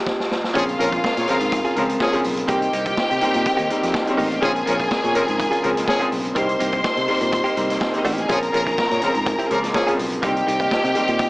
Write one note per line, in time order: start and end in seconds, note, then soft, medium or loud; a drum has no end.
0.00 0.38 G#2 medium
0.00 0.38 G#3 medium
0.00 0.38 C4 medium
0.00 0.38 G4 medium
0.07 kick loud
0.07 snare medium
0.20 snare medium
0.31 snare medium
0.44 snare medium
0.54 0.74 A#1 loud
0.54 1.18 C#3 medium
0.54 1.18 F3 medium
0.54 0.63 F3 loud
0.54 1.18 G#3 medium
0.54 2.47 A#3 medium
0.54 1.18 C4 loud
0.54 0.72 C#4 medium
0.54 0.63 C#4 loud
0.54 2.21 F4 loud
0.54 0.67 F4 medium
0.54 2.47 F4 medium
0.54 2.47 G#4 medium
0.54 0.66 G#4 medium
0.54 0.63 G#4 loud
0.54 2.47 A#4 medium
0.54 2.22 F5 loud
0.54 kick loud
0.54 closed hi-hat medium
0.68 muted clean electric guitar stroke soft
0.68 closed hi-hat soft
0.79 0.99 A#1 medium
0.79 0.88 F3 loud
0.79 0.92 C#4 medium
0.79 0.87 C#4 medium
0.79 0.91 F4 medium
0.79 0.90 G#4 medium
0.79 0.87 A#4 medium
0.79 closed hi-hat medium
0.92 1.03 C#4 soft
0.92 1.03 F4 medium
0.92 1.03 G#4 medium
0.92 kick medium
0.92 closed hi-hat soft
1.04 kick loud
1.04 snare loud
1.17 1.26 A#2 medium
1.17 1.26 A#3 medium
1.17 1.26 G#4 medium
1.17 1.26 C#5 medium
1.17 muted clean electric guitar stroke soft
1.17 closed hi-hat medium
1.27 1.34 C3 medium
1.27 1.70 F3 medium
1.27 1.36 F3 medium
1.27 1.70 G#3 medium
1.27 1.70 C4 loud
1.27 1.36 C#4 medium
1.27 1.36 A#4 loud
1.27 closed hi-hat medium
1.33 1.72 C#3 medium
1.40 1.60 G#2 medium
1.40 muted clean electric guitar stroke medium
1.40 closed hi-hat soft
1.52 muted clean electric guitar stroke soft
1.52 kick loud
1.52 closed hi-hat medium
1.64 1.75 C#4 medium
1.64 1.75 F4 medium
1.64 1.76 G#4 medium
1.64 closed hi-hat soft
1.76 1.96 C#2 loud
1.76 2.08 C#3 medium
1.76 1.84 F3 medium
1.76 2.08 F3 medium
1.76 2.08 G#3 medium
1.76 2.09 C4 loud
1.76 1.84 C#4 medium
1.76 1.84 A#4 medium
1.76 muted clean electric guitar stroke medium
1.76 closed hi-hat medium
1.89 muted clean electric guitar stroke soft
1.89 closed hi-hat medium
2.00 2.20 F3 loud
2.00 2.20 C#4 loud
2.00 2.20 G#4 loud
2.00 muted clean electric guitar stroke soft
2.00 kick loud
2.00 snare loud
2.13 2.44 C#3 medium
2.13 2.45 F3 medium
2.13 2.45 G#3 medium
2.13 2.45 C4 medium
2.13 2.24 C#4 medium
2.13 2.25 F4 medium
2.13 2.25 G#4 loud
2.13 closed hi-hat medium
2.24 2.44 B1 medium
2.24 muted clean electric guitar stroke soft
2.24 open hi-hat medium
2.37 muted clean electric guitar stroke soft
2.37 closed hi-hat soft
2.48 2.68 C2 medium
2.48 3.12 D#3 medium
2.48 3.12 G3 medium
2.48 2.66 A#3 medium
2.48 3.12 A#3 medium
2.48 4.41 C4 medium
2.48 3.12 C4 medium
2.48 2.61 D#4 medium
2.48 4.03 G4 loud
2.48 2.61 G4 loud
2.48 4.41 G4 medium
2.48 4.41 A#4 medium
2.48 4.41 D#5 medium
2.48 4.03 G5 loud
2.48 kick loud
2.48 closed hi-hat medium
2.62 muted clean electric guitar stroke medium
2.62 closed hi-hat soft
2.73 2.93 C2 medium
2.73 2.85 A#3 medium
2.73 2.85 D#4 medium
2.73 2.84 G4 medium
2.73 closed hi-hat medium
2.85 2.95 A#3 medium
2.85 2.96 D#4 medium
2.85 2.96 G4 medium
2.85 kick medium
2.85 closed hi-hat medium
2.97 kick loud
2.97 snare loud
3.10 3.20 C3 medium
3.10 muted clean electric guitar stroke medium
3.10 closed hi-hat medium
3.21 3.63 D#3 medium
3.21 3.64 G3 medium
3.21 3.64 A#3 medium
3.21 3.64 C4 loud
3.21 closed hi-hat medium
3.33 3.44 A#2 loud
3.33 muted clean electric guitar stroke medium
3.33 closed hi-hat soft
3.45 muted clean electric guitar stroke soft
3.45 kick loud
3.45 closed hi-hat medium
3.57 3.68 D#2 medium
3.57 3.68 A#3 medium
3.57 3.68 D#4 medium
3.57 3.68 G4 medium
3.57 closed hi-hat soft
3.69 4.02 D#3 medium
3.69 4.02 G3 medium
3.69 4.02 A#3 medium
3.69 4.02 C4 medium
3.69 muted clean electric guitar stroke soft
3.69 closed hi-hat medium
3.82 3.92 F2 loud
3.82 muted clean electric guitar stroke soft
3.82 snare soft
3.82 closed hi-hat medium
3.93 muted clean electric guitar stroke soft
3.93 kick loud
3.93 snare loud
4.06 4.38 D#3 medium
4.06 4.38 G3 medium
4.06 4.38 A#3 medium
4.06 4.39 C4 loud
4.06 muted clean electric guitar stroke medium
4.06 closed hi-hat soft
4.10 4.19 C#4 medium
4.10 4.18 C#5 medium
4.17 4.38 A1 loud
4.17 4.36 A#3 loud
4.17 4.30 D#4 medium
4.17 4.27 D#4 medium
4.17 4.29 G4 loud
4.17 4.26 D#5 medium
4.17 open hi-hat medium
4.27 4.35 F4 medium
4.27 4.35 F5 loud
4.27 muted clean electric guitar stroke soft
4.32 4.43 G4 medium
4.32 4.43 G5 loud
4.32 closed hi-hat soft
4.41 4.62 A#1 loud
4.41 5.05 C#3 medium
4.41 4.51 F3 loud
4.41 5.06 F3 medium
4.41 5.06 G#3 medium
4.41 6.34 A#3 medium
4.41 5.06 C4 loud
4.41 4.59 C#4 loud
4.41 4.51 C#4 loud
4.41 4.54 F4 medium
4.41 6.34 F4 medium
4.41 4.53 G#4 loud
4.41 6.34 G#4 medium
4.41 4.51 G#4 loud
4.41 6.09 G#4 loud
4.41 6.34 A#4 medium
4.41 6.09 G#5 loud
4.41 kick loud
4.41 closed hi-hat medium
4.54 muted clean electric guitar stroke medium
4.54 closed hi-hat soft
4.66 4.86 A#1 loud
4.66 4.74 F3 medium
4.66 4.79 C#4 medium
4.66 4.74 C#4 medium
4.66 4.78 F4 medium
4.66 4.78 G#4 medium
4.66 4.74 A#4 medium
4.66 closed hi-hat medium
4.79 4.89 C#4 medium
4.79 4.90 F4 medium
4.79 4.90 G#4 medium
4.79 kick medium
4.79 closed hi-hat medium
4.90 muted clean electric guitar stroke soft
4.90 kick loud
4.90 snare loud
5.03 5.13 A#2 medium
5.03 5.13 A#3 medium
5.03 5.13 G#4 medium
5.03 5.13 C#5 medium
5.03 muted clean electric guitar stroke medium
5.03 closed hi-hat soft
5.15 5.57 C#3 medium
5.15 5.23 F3 medium
5.15 5.57 F3 medium
5.15 5.57 G#3 medium
5.15 5.58 C4 medium
5.15 5.23 C#4 medium
5.15 5.23 A#4 loud
5.15 closed hi-hat medium
5.27 5.48 G#2 medium
5.27 muted clean electric guitar stroke soft
5.27 closed hi-hat soft
5.38 muted clean electric guitar stroke medium
5.38 kick loud
5.38 closed hi-hat medium
5.51 5.62 C#4 medium
5.51 5.63 F4 medium
5.51 5.63 G#4 medium
5.51 closed hi-hat soft
5.63 5.83 C#2 loud
5.63 5.95 C#3 medium
5.63 5.95 F3 medium
5.63 5.71 F3 medium
5.63 5.95 G#3 medium
5.63 5.95 C4 loud
5.63 5.71 C#4 medium
5.63 5.71 A#4 medium
5.63 closed hi-hat soft
5.75 muted clean electric guitar stroke soft
5.75 snare soft
5.75 closed hi-hat medium
5.87 6.07 F3 medium
5.87 6.07 C#4 loud
5.87 6.07 G#4 loud
5.87 muted clean electric guitar stroke soft
5.87 kick loud
5.87 snare loud
6.00 6.31 C#3 medium
6.00 6.31 F3 medium
6.00 6.31 G#3 medium
6.00 6.31 C4 loud
6.00 6.09 C#4 medium
6.00 6.10 F4 medium
6.00 6.11 G#4 loud
6.00 closed hi-hat soft
6.10 6.32 B1 medium
6.10 muted clean electric guitar stroke soft
6.10 open hi-hat medium
6.24 muted clean electric guitar stroke soft
6.24 closed hi-hat soft
6.35 6.55 C2 loud
6.35 6.98 D#3 medium
6.35 6.98 G3 medium
6.35 6.53 A#3 medium
6.35 6.99 A#3 medium
6.35 8.27 C4 medium
6.35 6.99 C4 medium
6.35 6.48 D#4 medium
6.35 8.27 G4 medium
6.35 6.48 G4 loud
6.35 8.28 A#4 medium
6.35 7.90 C5 loud
6.35 8.28 D#5 medium
6.35 7.90 C6 loud
6.35 kick loud
6.35 closed hi-hat medium
6.49 muted clean electric guitar stroke medium
6.49 closed hi-hat soft
6.59 6.80 C2 loud
6.59 6.72 A#3 medium
6.59 6.72 D#4 medium
6.59 6.71 G4 medium
6.59 closed hi-hat medium
6.72 6.83 A#3 medium
6.72 6.83 D#4 medium
6.72 6.83 G4 medium
6.72 kick medium
6.72 closed hi-hat soft
6.84 muted clean electric guitar stroke soft
6.84 kick loud
6.84 snare loud
6.96 7.06 C3 medium
6.96 muted clean electric guitar stroke soft
6.96 closed hi-hat soft
7.08 7.50 D#3 medium
7.08 7.50 G3 medium
7.08 7.50 A#3 medium
7.08 7.51 C4 medium
7.08 open hi-hat medium
7.21 7.41 A#2 loud
7.21 muted clean electric guitar stroke medium
7.21 closed hi-hat soft
7.32 muted clean electric guitar stroke soft
7.32 kick loud
7.32 closed hi-hat medium
7.44 7.54 A#3 medium
7.44 7.55 D#4 medium
7.44 7.56 G4 medium
7.44 closed hi-hat soft
7.56 7.76 C2 medium
7.56 7.88 D#3 medium
7.56 7.88 G3 medium
7.56 7.88 A#3 medium
7.56 7.89 C4 loud
7.56 muted clean electric guitar stroke soft
7.56 closed hi-hat medium
7.69 muted clean electric guitar stroke soft
7.69 snare soft
7.69 closed hi-hat medium
7.81 muted clean electric guitar stroke soft
7.81 kick loud
7.81 snare loud
7.93 8.24 D#3 medium
7.93 8.25 G3 medium
7.93 8.25 A#3 medium
7.93 8.25 C4 medium
7.93 muted clean electric guitar stroke medium
7.93 closed hi-hat soft
7.97 8.05 D#4 medium
7.97 8.05 D#5 medium
8.05 8.25 A1 medium
8.05 8.25 A#3 medium
8.05 8.17 D#4 loud
8.05 8.13 F4 medium
8.05 8.16 G4 loud
8.05 8.13 F5 medium
8.05 open hi-hat medium
8.12 8.21 G4 medium
8.12 8.21 G5 medium
8.17 8.29 G#4 medium
8.17 8.29 G#5 loud
8.17 muted clean electric guitar stroke soft
8.17 closed hi-hat soft
8.28 8.49 A#1 loud
8.28 8.92 C#3 medium
8.28 8.37 F3 loud
8.28 8.92 F3 medium
8.28 8.92 G#3 medium
8.28 10.21 A#3 medium
8.28 8.92 C4 medium
8.28 8.46 C#4 medium
8.28 8.37 C#4 loud
8.28 8.40 F4 medium
8.28 10.21 F4 medium
8.28 8.37 G#4 loud
8.28 8.40 G#4 loud
8.28 10.21 G#4 medium
8.28 9.95 A#4 loud
8.28 10.21 A#4 medium
8.28 9.95 A#5 loud
8.28 kick loud
8.28 closed hi-hat medium
8.41 muted clean electric guitar stroke medium
8.41 closed hi-hat soft
8.52 8.73 A#1 medium
8.52 8.61 F3 medium
8.52 8.65 C#4 medium
8.52 8.61 C#4 medium
8.52 8.64 F4 medium
8.52 8.64 G#4 medium
8.52 8.61 A#4 loud
8.52 closed hi-hat medium
8.65 8.76 C#4 medium
8.65 8.77 F4 medium
8.65 8.78 G#4 medium
8.65 kick medium
8.65 closed hi-hat soft
8.78 muted clean electric guitar stroke soft
8.78 muted fingered electric bass stroke medium
8.78 kick loud
8.78 snare loud
8.90 9.00 A#2 loud
8.90 9.00 A#3 medium
8.90 9.00 G#4 medium
8.90 9.00 C#5 medium
8.90 muted clean electric guitar stroke soft
8.90 closed hi-hat medium
9.02 9.43 C#3 medium
9.02 9.10 F3 medium
9.02 9.44 F3 medium
9.02 9.44 G#3 medium
9.02 9.44 C4 loud
9.02 9.10 C#4 medium
9.02 9.10 A#4 medium
9.02 closed hi-hat medium
9.14 9.34 G#2 medium
9.14 muted clean electric guitar stroke medium
9.14 closed hi-hat soft
9.26 muted clean electric guitar stroke medium
9.26 kick loud
9.26 closed hi-hat medium
9.39 9.49 C#4 medium
9.39 9.49 F4 medium
9.39 9.50 G#4 medium
9.39 closed hi-hat soft
9.50 9.70 C#2 loud
9.50 9.82 C#3 medium
9.50 9.82 F3 medium
9.50 9.58 F3 medium
9.50 9.82 G#3 medium
9.50 9.82 A#3 loud
9.50 9.58 C#4 medium
9.50 9.58 A#4 medium
9.50 muted clean electric guitar stroke soft
9.50 closed hi-hat soft
9.63 muted clean electric guitar stroke medium
9.63 snare soft
9.63 closed hi-hat soft
9.74 9.94 F3 medium
9.74 9.94 C#4 loud
9.74 9.94 G#4 loud
9.74 muted clean electric guitar stroke soft
9.74 kick loud
9.74 snare loud
9.87 10.18 C#3 medium
9.87 10.18 F3 medium
9.87 10.18 G#3 medium
9.87 10.19 C4 medium
9.87 9.97 C#4 medium
9.87 9.97 F4 medium
9.87 9.98 G#4 loud
9.87 closed hi-hat medium
9.98 10.18 B1 medium
9.98 muted clean electric guitar stroke soft
9.98 open hi-hat medium
10.11 muted clean electric guitar stroke soft
10.11 closed hi-hat soft
10.22 10.42 C2 loud
10.22 10.29 D3 medium
10.22 10.85 G3 medium
10.22 10.40 A#3 medium
10.22 10.86 A#3 medium
10.22 10.86 C4 loud
10.22 11.30 C4 medium
10.22 10.35 D#4 medium
10.22 11.30 G4 loud
10.22 10.34 G4 medium
10.22 11.30 G4 medium
10.22 11.30 A#4 medium
10.22 11.30 D#5 medium
10.22 11.30 G5 loud
10.22 kick loud
10.22 closed hi-hat medium
10.28 10.88 D#3 medium
10.36 muted clean electric guitar stroke soft
10.36 closed hi-hat soft
10.46 10.66 C2 loud
10.46 10.60 A#3 medium
10.46 10.59 D#4 medium
10.46 10.58 G4 medium
10.46 closed hi-hat medium
10.59 10.70 A#3 medium
10.59 10.71 D#4 soft
10.59 10.71 G4 medium
10.59 kick medium
10.59 closed hi-hat medium
10.71 kick loud
10.71 snare loud
10.84 10.93 C3 loud
10.84 muted clean electric guitar stroke soft
10.84 closed hi-hat medium
10.95 11.30 D#3 medium
10.95 11.30 G3 medium
10.95 11.30 A#3 medium
10.95 11.30 C4 medium
10.95 closed hi-hat medium
11.08 11.27 A#2 loud
11.08 muted clean electric guitar stroke medium
11.08 closed hi-hat soft
11.19 muted clean electric guitar stroke soft
11.19 kick loud
11.19 closed hi-hat medium